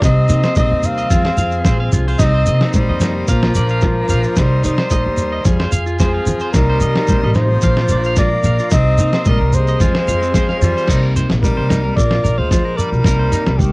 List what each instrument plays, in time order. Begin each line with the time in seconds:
Already playing: transistor combo organ A#5
0.02 upright bass C2, steel-string acoustic guitar C3 D#4, tenor saxophone C4, transistor combo organ D#5 C6, muted trumpet D#5, kick, snare, muted conga, shekere
0.29 upright bass C3, steel-string acoustic guitar A#3, clean electric guitar D#4, snare, muted conga, shekere
0.43 clean electric guitar C5, snare, shekere
0.56 upright bass A#1, steel-string acoustic guitar G3 D#4, tenor saxophone C4, clean electric guitar D#5, muted trumpet D#5, kick, high conga, shekere
0.72 upright bass D#2
0.83 steel-string acoustic guitar A#3, tenor saxophone C4, muted trumpet F5, shekere
0.98 clean electric guitar D#5, shekere
1.10 upright bass F2, steel-string acoustic guitar F3 C4 F4 G#4, clean electric guitar F4, transistor combo organ F5 G#5, kick, muted conga, high conga, low conga, shekere
1.25 clean electric guitar C5, snare
1.37 upright bass F2, steel-string acoustic guitar F4, clean electric guitar F5, shekere
1.52 muted clean electric guitar stroke, shekere
1.65 upright bass A#1, steel-string acoustic guitar C4 G#4, clean electric guitar C5, kick, snare, high conga, shekere
1.80 clean electric guitar F5
1.92 upright bass C2, steel-string acoustic guitar D4, clean electric guitar F4, snare, muted conga, low conga, shekere
2.08 steel-string acoustic guitar F4, clean electric guitar C5
2.19 upright bass C2, steel-string acoustic guitar C3 D#4, tenor saxophone C4, clean electric guitar D#4, transistor combo organ D#5 A#5 C6, muted trumpet D#5, kick, snare, muted conga, shekere
2.34 clean electric guitar C5
2.46 upright bass C3, steel-string acoustic guitar A#3, clean electric guitar D#5, muted conga, shekere
2.61 clean electric guitar D#4, snare
2.73 upright bass A#1, steel-string acoustic guitar G3 D#4, tenor saxophone G3, muted trumpet C5, kick, high conga, shekere
2.89 upright bass F2, clean electric guitar D#5
3.00 steel-string acoustic guitar A#3, clean electric guitar D#4, snare, shekere
3.28 upright bass A#1, steel-string acoustic guitar A#2 F4, tenor saxophone F3, muted trumpet A#4, transistor combo organ F5 A#5 D6, clean electric guitar F5, kick, snare, shekere
3.43 clean electric guitar F4, snare
3.55 upright bass A#1, steel-string acoustic guitar D4, clean electric guitar D5, high conga, shekere
3.69 clean electric guitar F5, shekere
3.81 steel-string acoustic guitar F3 F4, clean electric guitar F4, kick, snare, high conga, shekere
4.09 upright bass A#1, steel-string acoustic guitar D4, clean electric guitar F5, snare, muted conga, shekere
4.23 clean electric guitar F4, shekere
4.36 upright bass C2, steel-string acoustic guitar G3 A#3, tenor saxophone G3, muted trumpet C5, transistor combo organ D#5 A#5 C6, muted steel-string acoustic guitar stroke, kick, snare, muted conga, shekere
4.41 steel-string acoustic guitar D#4 A#4
4.64 upright bass C3, clean electric guitar D#4, muted trumpet C5, muted steel-string acoustic guitar stroke, muted conga, shekere
4.68 tenor saxophone G3
4.78 clean electric guitar C5, snare
4.90 upright bass A#1, steel-string acoustic guitar G3, clean electric guitar D#5, kick, high conga, shekere
4.95 steel-string acoustic guitar D#4
5.06 upright bass D#2
5.17 steel-string acoustic guitar A#3, shekere
5.32 clean electric guitar D#5
5.45 upright bass F2, steel-string acoustic guitar F3 G#4, transistor combo organ F5 G#5, muted clean electric guitar stroke, kick, snare, muted conga, high conga, low conga, shekere
5.60 clean electric guitar C5, snare
5.72 upright bass F2, steel-string acoustic guitar F4, clean electric guitar F5, shekere
5.86 clean electric guitar F4, shekere
5.98 tenor saxophone F3, steel-string acoustic guitar C4 F4, muted trumpet G#4, clean electric guitar C5, kick, snare, high conga, shekere
6.14 clean electric guitar F5
6.26 upright bass F2, steel-string acoustic guitar F4, muted conga, low conga, shekere
6.40 clean electric guitar C5, shekere
6.53 upright bass C2, steel-string acoustic guitar C3 G3 A#3, tenor saxophone G3, muted trumpet A#4, transistor combo organ D#5 A#5, muted clean electric guitar stroke, kick, snare, shekere
6.57 steel-string acoustic guitar D#4
6.69 clean electric guitar C5
6.80 upright bass C3, steel-string acoustic guitar A#3, clean electric guitar D#5, muted conga, shekere
6.95 clean electric guitar D#4, snare
7.07 upright bass A#1, steel-string acoustic guitar G3 D#4, clean electric guitar C5, kick, high conga, shekere
7.23 upright bass A1, clean electric guitar D#5
7.34 tenor saxophone F3, steel-string acoustic guitar A#3, clean electric guitar D#4, muted trumpet C5, snare, shekere
7.61 upright bass A#1, steel-string acoustic guitar A#2 F3 D4, transistor combo organ F5 A#5 D6, clean electric guitar F5, kick, snare, muted conga, shekere
7.66 steel-string acoustic guitar F4 A#4
7.77 clean electric guitar F4, snare
7.88 upright bass A#1, steel-string acoustic guitar D4, clean electric guitar D5, high conga, shekere
8.04 clean electric guitar F5, shekere
8.16 steel-string acoustic guitar F3 F4, tenor saxophone A#3, clean electric guitar F4, muted trumpet D5, kick, snare, high conga, shekere
8.43 upright bass A#1, steel-string acoustic guitar D4, clean electric guitar F5, muted conga, shekere
8.59 clean electric guitar F4, shekere
8.71 upright bass C2, steel-string acoustic guitar C3 D#4, tenor saxophone C4, muted trumpet D#5, transistor combo organ D#5 C6, kick, snare, muted conga, shekere
8.98 upright bass C3, steel-string acoustic guitar A#3, clean electric guitar D#4, muted conga, shekere
9.13 clean electric guitar C5, snare, shekere
9.25 upright bass A#1, steel-string acoustic guitar G3 D#4, tenor saxophone G3, muted trumpet A#4, clean electric guitar D#5, kick, high conga, shekere
9.41 upright bass C2
9.53 tenor saxophone G#3, steel-string acoustic guitar A#3, muted trumpet C5, shekere
9.67 clean electric guitar D#5, shekere
9.80 upright bass F2, steel-string acoustic guitar F3 C4 F4 G#4, clean electric guitar F4, transistor combo organ F5 G#5, kick, muted conga, high conga, low conga, shekere
9.95 clean electric guitar C5, snare
10.08 upright bass F2, steel-string acoustic guitar F4, clean electric guitar F5, shekere
10.22 clean electric guitar C4, shekere
10.34 steel-string acoustic guitar C4 G#4, clean electric guitar C5, kick, snare, high conga, shekere
10.49 clean electric guitar F5, snare
10.59 upright bass F2, tenor saxophone G3, clean electric guitar F4, steel-string acoustic guitar F4, muted trumpet C5, muted conga, low conga, shekere
10.77 clean electric guitar C5, shekere
10.87 upright bass C2, steel-string acoustic guitar C3 A#3 D#4 A#4, clean electric guitar D#4, kick, snare, crash, shekere
11.03 clean electric guitar A#4
11.16 steel-string acoustic guitar D#4, clean electric guitar C5, snare, shekere
11.30 upright bass A#1, snare, shekere
11.42 steel-string acoustic guitar G3, tenor saxophone G3, muted trumpet A#4, kick, muted conga, high conga, shekere
11.57 upright bass C2, clean electric guitar C5
11.69 steel-string acoustic guitar A#3, clean electric guitar D#4, snare, high conga, shekere
11.84 clean electric guitar A#4
11.96 upright bass A#1, steel-string acoustic guitar A#2 D4 F4 A#4, tenor saxophone A#3, muted trumpet D5, kick, snare, muted conga, shekere
12.10 clean electric guitar F4, snare
12.24 upright bass A#1, steel-string acoustic guitar F4, clean electric guitar A#4, muted conga, shekere
12.38 upright bass D2, tenor saxophone G#3, muted trumpet C5, clean electric guitar F5
12.51 steel-string acoustic guitar F3, clean electric guitar F4, kick, snare, high conga, shekere
12.65 clean electric guitar A#4
12.77 tenor saxophone G3, steel-string acoustic guitar D4, muted trumpet A#4, clean electric guitar D5, shekere
12.92 upright bass B1, shekere
13.04 upright bass C2, steel-string acoustic guitar C3 A#3 D#4, clean electric guitar A#4, kick, snare, muted conga, shekere
13.19 clean electric guitar C5
13.32 clean electric guitar D#4, steel-string acoustic guitar D#4, snare, shekere
13.46 upright bass C2, snare, shekere
13.58 tenor saxophone D#3, steel-string acoustic guitar G3, muted trumpet G4, kick, muted conga, high conga, low conga, shekere